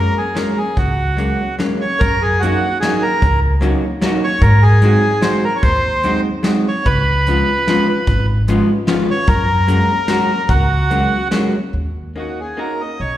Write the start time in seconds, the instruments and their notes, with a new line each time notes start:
Already playing: hollow-body jazz guitar F#3 G#3 A#3 C#4, bandoneon A#4
0.18 bandoneon G#4
0.35 hollow-body jazz guitar F#3 G#3 A#3 C#4, bandoneon A#4, snare, closed hi-hat
0.58 bandoneon G#4
0.77 upright bass C#2, bandoneon F#4, kick, closed hi-hat
1.17 hollow-body jazz guitar F#3 G#3 A#3 C#4, closed hi-hat
1.59 hollow-body jazz guitar F#3 G#3 A#3 C#4, snare, closed hi-hat
1.81 bandoneon C#5
1.99 upright bass F#2, bandoneon A#4, kick, closed hi-hat
2.22 bandoneon G#4
2.40 hollow-body jazz guitar F#3 A#3 C#4 D#4, bandoneon F#4, closed hi-hat
2.44 hollow-body jazz guitar F#4
2.80 hollow-body jazz guitar F#3 A#3 C#4 D#4 F#4, bandoneon G#4, snare, closed hi-hat
3.02 bandoneon A#4
3.22 upright bass C#2, kick, closed hi-hat
3.61 hollow-body jazz guitar F#3 A#3 C#4 D#4 F#4, closed hi-hat
4.01 hollow-body jazz guitar F#3 A#3 C#4 D#4 F#4, snare, closed hi-hat
4.24 bandoneon C#5
4.42 upright bass G#2, bandoneon A#4, kick, closed hi-hat
4.63 bandoneon G#4
4.82 hollow-body jazz guitar F#3 G#3 C4 D#4 F#4, closed hi-hat
5.21 hollow-body jazz guitar F#3 G#3 C4 D#4 F#4, bandoneon C5, snare, closed hi-hat
5.44 bandoneon A#4
5.56 bandoneon C#5
5.62 upright bass D#2, bandoneon C5, kick, closed hi-hat
6.03 hollow-body jazz guitar F#3 G#3 C4 D#4 F#4, closed hi-hat
6.43 hollow-body jazz guitar F#3 G#3 C4 D#4 F#4, snare, closed hi-hat
6.68 bandoneon C#5
6.86 upright bass C#2, bandoneon B4, kick, closed hi-hat
7.26 hollow-body jazz guitar F3 G#3 B3 C#4 F4, closed hi-hat
7.68 hollow-body jazz guitar F3 G#3 B3 C#4 F4, snare, closed hi-hat
7.89 bandoneon B4
8.07 upright bass G#1, kick, closed hi-hat
8.48 hollow-body jazz guitar F3 G#3 B3 C#4 F4, closed hi-hat
8.87 hollow-body jazz guitar F3 G#3 B3 C#4 F4, snare, closed hi-hat
9.11 bandoneon C#5
9.27 upright bass F#2, bandoneon A#4, kick, closed hi-hat
9.68 hollow-body jazz guitar F#3 G#3 A#3 C#4 F#4, closed hi-hat
10.08 hollow-body jazz guitar F#3 G#3 A#3 C#4 F#4, snare, closed hi-hat
10.49 upright bass C#2, bandoneon F#4, kick, closed hi-hat
10.90 hollow-body jazz guitar F#3 G#3 A#3 C#4 F#4, closed hi-hat
11.31 hollow-body jazz guitar F#3 G#3 A#3 C#4 F#4, snare, closed hi-hat
11.73 upright bass D#2
12.16 hollow-body jazz guitar A#3 C#4 D#4 F#4, bandoneon F#4
12.40 bandoneon G#4
12.57 hollow-body jazz guitar A#3 C#4 D#4 F#4, bandoneon A#4
12.81 bandoneon D#5
13.00 upright bass B1, bandoneon C#5